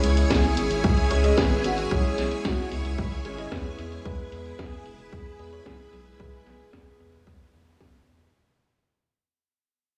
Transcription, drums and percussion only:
0.04 closed hi-hat
0.17 closed hi-hat
0.30 kick, snare, closed hi-hat
0.44 closed hi-hat
0.57 closed hi-hat
0.71 closed hi-hat
0.84 kick, closed hi-hat
0.97 closed hi-hat
1.11 closed hi-hat
1.24 closed hi-hat
1.37 kick, snare, closed hi-hat
1.51 closed hi-hat
1.64 closed hi-hat
1.78 closed hi-hat
1.91 kick, closed hi-hat
2.05 closed hi-hat
2.18 snare, closed hi-hat
2.31 closed hi-hat
2.45 kick, snare, closed hi-hat
2.58 closed hi-hat
2.72 closed hi-hat
2.85 closed hi-hat
2.98 kick, closed hi-hat
3.12 closed hi-hat
3.25 closed hi-hat
3.38 closed hi-hat
3.52 kick, snare, closed hi-hat
3.65 closed hi-hat
3.79 closed hi-hat
3.92 closed hi-hat
4.05 kick, closed hi-hat
4.19 closed hi-hat
4.32 closed hi-hat
4.46 closed hi-hat
4.59 kick, snare, closed hi-hat
4.72 closed hi-hat
4.86 closed hi-hat
4.99 closed hi-hat
5.13 kick, closed hi-hat
5.26 closed hi-hat
5.39 closed hi-hat
5.53 closed hi-hat
5.66 kick, snare, closed hi-hat
5.79 closed hi-hat
5.93 closed hi-hat
6.06 closed hi-hat
6.20 kick, closed hi-hat
6.33 closed hi-hat
6.47 snare, closed hi-hat
6.60 closed hi-hat
6.73 kick, snare, closed hi-hat
6.87 closed hi-hat
7.00 closed hi-hat
7.13 closed hi-hat
7.27 kick, closed hi-hat
7.40 closed hi-hat
7.54 closed hi-hat
7.67 closed hi-hat
7.81 kick, snare, closed hi-hat
7.94 closed hi-hat
8.07 closed hi-hat
8.21 closed hi-hat

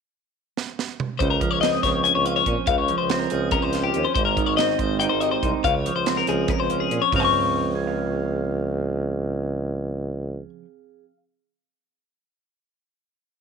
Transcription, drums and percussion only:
0.57 snare
0.79 snare
1.00 mid tom
1.20 kick, closed hi-hat
1.41 kick, closed hi-hat
1.63 snare, closed hi-hat
1.83 kick, snare, closed hi-hat
2.05 closed hi-hat
2.26 closed hi-hat
2.46 kick, closed hi-hat
2.67 kick, closed hi-hat
2.88 closed hi-hat
3.10 snare, closed hi-hat
3.30 closed hi-hat
3.51 kick, closed hi-hat
3.73 snare, closed hi-hat
3.94 closed hi-hat
4.15 kick, closed hi-hat
4.37 kick, closed hi-hat
4.58 snare, closed hi-hat
4.79 kick, closed hi-hat
5.01 closed hi-hat
5.21 closed hi-hat
5.43 kick, closed hi-hat
5.64 kick, closed hi-hat
5.86 closed hi-hat
6.06 snare, closed hi-hat
6.27 closed hi-hat
6.48 kick, closed hi-hat
6.70 closed hi-hat
6.91 closed hi-hat
7.12 kick, floor tom, open hi-hat

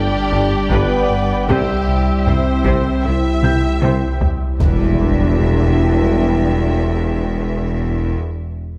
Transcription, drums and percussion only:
0.32 taiko low-mid
0.70 taiko
1.49 taiko
2.27 taiko low-mid
2.65 taiko
3.43 taiko mid
3.82 taiko mid
4.21 taiko low
4.60 taiko low

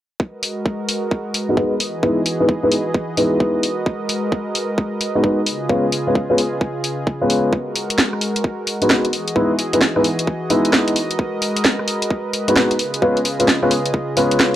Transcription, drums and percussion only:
0.20 kick
0.43 open hi-hat
0.66 kick
0.89 open hi-hat
1.11 kick
1.34 open hi-hat
1.57 kick
1.80 open hi-hat
2.03 kick
2.26 open hi-hat
2.49 kick
2.72 open hi-hat
2.95 kick
3.17 open hi-hat
3.40 kick
3.63 open hi-hat
3.86 kick
4.09 open hi-hat
4.32 kick
4.55 open hi-hat
4.78 kick
5.01 open hi-hat
5.24 kick
5.46 open hi-hat
5.69 kick
5.92 open hi-hat
6.15 kick
6.38 open hi-hat
6.61 kick
6.84 open hi-hat
7.07 kick
7.30 open hi-hat
7.53 kick
7.76 open hi-hat
7.90 closed hi-hat
7.98 kick, snare
8.13 cross-stick
8.21 open hi-hat
8.36 closed hi-hat
8.44 kick
8.67 open hi-hat
8.82 closed hi-hat
8.90 kick, snare
9.05 closed hi-hat
9.13 open hi-hat
9.28 closed hi-hat
9.36 kick
9.59 open hi-hat
9.73 closed hi-hat
9.81 kick, snare
9.96 cross-stick
10.04 open hi-hat
10.19 closed hi-hat
10.27 kick
10.50 open hi-hat
10.65 closed hi-hat
10.73 kick, snare
10.88 closed hi-hat
10.96 open hi-hat
11.11 closed hi-hat
11.19 kick
11.42 open hi-hat
11.57 closed hi-hat
11.65 kick, snare
11.79 cross-stick
11.88 open hi-hat
12.02 closed hi-hat
12.11 kick
12.34 open hi-hat
12.48 closed hi-hat
12.56 kick, snare
12.71 closed hi-hat
12.79 open hi-hat
12.94 closed hi-hat
13.02 kick
13.17 closed hi-hat
13.25 open hi-hat
13.40 closed hi-hat
13.48 kick, snare
13.63 cross-stick
13.71 cross-stick, open hi-hat
13.86 closed hi-hat
13.94 kick
14.17 open hi-hat
14.31 closed hi-hat
14.40 kick, snare

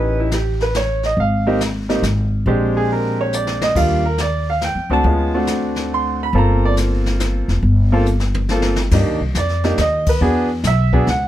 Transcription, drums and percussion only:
0.31 snare, hi-hat pedal
0.60 snare
0.74 snare, hi-hat pedal
1.03 snare
1.17 brush sweep, kick
1.61 snare, hi-hat pedal
1.89 snare
2.03 snare, hi-hat pedal
2.46 brush sweep, kick
3.33 hi-hat pedal
3.47 snare
3.62 snare
3.76 brush sweep, kick, crash
4.18 snare, hi-hat pedal
4.61 snare, hi-hat pedal
5.04 brush sweep, kick
5.47 snare, hi-hat pedal
5.76 snare
6.33 brush sweep, kick
6.77 snare, hi-hat pedal
7.06 snare
7.20 snare, hi-hat pedal
7.49 snare
7.63 brush sweep, kick
8.06 hi-hat pedal
8.20 snare
8.34 floor tom
8.49 snare
8.62 snare
8.76 snare
8.91 brush sweep, kick, snare, crash
9.35 kick, snare, hi-hat pedal
9.49 snare
9.64 snare
9.78 kick, snare, hi-hat pedal
10.06 kick, crash
10.21 brush sweep
10.64 kick, snare, hi-hat pedal
10.93 kick
11.07 kick, snare

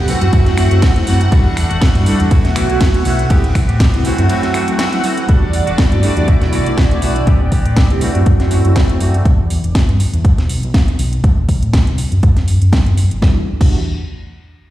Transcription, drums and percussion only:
0.08 open hi-hat
0.21 closed hi-hat
0.33 kick, closed hi-hat, ride
0.46 snare, closed hi-hat
0.57 finger snap, open hi-hat
0.71 closed hi-hat
0.82 kick, snare, closed hi-hat, ride
0.96 closed hi-hat
1.07 open hi-hat
1.21 closed hi-hat
1.32 kick, closed hi-hat, ride
1.57 finger snap, open hi-hat
1.71 closed hi-hat
1.81 kick, snare, closed hi-hat, ride
1.95 closed hi-hat
2.06 open hi-hat
2.20 closed hi-hat
2.31 kick, closed hi-hat, ride
2.45 snare, closed hi-hat
2.56 finger snap, open hi-hat
2.70 closed hi-hat
2.81 kick, snare, closed hi-hat, ride
2.94 closed hi-hat
3.05 open hi-hat
3.19 closed hi-hat
3.30 kick, closed hi-hat, ride
3.44 closed hi-hat
3.55 finger snap, kick, open hi-hat
3.69 closed hi-hat
3.80 kick, snare, closed hi-hat, ride
3.94 closed hi-hat
4.05 open hi-hat
4.18 closed hi-hat
4.29 closed hi-hat, ride
4.43 snare, closed hi-hat
4.54 finger snap, open hi-hat
4.68 closed hi-hat
4.79 snare, closed hi-hat, ride
4.93 closed hi-hat
5.04 open hi-hat
5.17 closed hi-hat
5.29 kick, closed hi-hat
5.53 open hi-hat
5.67 closed hi-hat
5.78 kick, snare, closed hi-hat
5.92 closed hi-hat
6.03 open hi-hat
6.17 closed hi-hat
6.28 kick, closed hi-hat
6.42 snare, closed hi-hat
6.53 open hi-hat
6.66 closed hi-hat
6.78 kick, snare, closed hi-hat
6.91 closed hi-hat
7.02 open hi-hat
7.16 closed hi-hat
7.27 kick, closed hi-hat
7.52 kick, open hi-hat
7.66 closed hi-hat
7.76 kick, snare, closed hi-hat
7.90 closed hi-hat
8.01 open hi-hat
8.15 closed hi-hat
8.26 kick, closed hi-hat
8.40 snare, closed hi-hat
8.51 open hi-hat
8.65 closed hi-hat
8.76 kick, snare, closed hi-hat
8.89 closed hi-hat
9.00 open hi-hat
9.14 closed hi-hat
9.25 kick, closed hi-hat
9.50 open hi-hat
9.64 closed hi-hat
9.75 kick, snare, closed hi-hat
9.89 closed hi-hat
10.00 open hi-hat
10.14 closed hi-hat
10.25 kick, closed hi-hat
10.38 snare, closed hi-hat
10.49 open hi-hat
10.63 closed hi-hat
10.74 kick, snare, closed hi-hat
10.88 closed hi-hat
10.99 open hi-hat
11.13 closed hi-hat
11.24 kick, closed hi-hat
11.49 kick, open hi-hat
11.63 closed hi-hat
11.73 kick, snare, closed hi-hat
11.87 closed hi-hat
11.98 open hi-hat
12.12 closed hi-hat
12.23 kick, closed hi-hat
12.37 snare, closed hi-hat
12.48 open hi-hat
12.62 closed hi-hat
12.73 kick, snare, closed hi-hat
12.86 closed hi-hat
12.97 open hi-hat
13.11 closed hi-hat
13.22 kick, snare
13.61 kick, crash

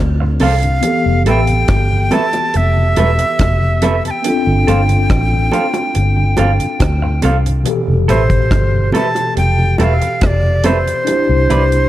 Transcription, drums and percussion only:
0.40 open hi-hat, low bongo
0.63 closed hi-hat
0.83 closed hi-hat
1.26 closed hi-hat
1.47 closed hi-hat
1.68 kick, cross-stick, closed hi-hat, high bongo
2.11 closed hi-hat, high bongo, low bongo
2.33 closed hi-hat, high bongo
2.54 closed hi-hat
2.96 closed hi-hat, high bongo
3.19 closed hi-hat
3.39 kick, cross-stick, closed hi-hat, high bongo
3.82 closed hi-hat, low bongo
4.05 closed hi-hat
4.24 closed hi-hat
4.68 closed hi-hat
4.89 closed hi-hat
5.10 kick, cross-stick, closed hi-hat, high bongo
5.51 closed hi-hat, high bongo, low bongo
5.74 closed hi-hat, high bongo
5.95 closed hi-hat
6.37 closed hi-hat, high bongo
6.60 closed hi-hat
6.80 kick, cross-stick, closed hi-hat, high bongo
7.22 closed hi-hat, low bongo
7.46 closed hi-hat
7.66 closed hi-hat
8.09 closed hi-hat
8.30 kick, closed hi-hat
8.51 kick, cross-stick, closed hi-hat, high bongo
8.92 closed hi-hat, high bongo, low bongo
9.15 closed hi-hat, high bongo
9.37 closed hi-hat
9.78 closed hi-hat, high bongo
10.02 closed hi-hat
10.21 kick, cross-stick, closed hi-hat, high bongo
10.64 closed hi-hat, low bongo
10.87 closed hi-hat
11.07 closed hi-hat
11.50 closed hi-hat
11.72 closed hi-hat

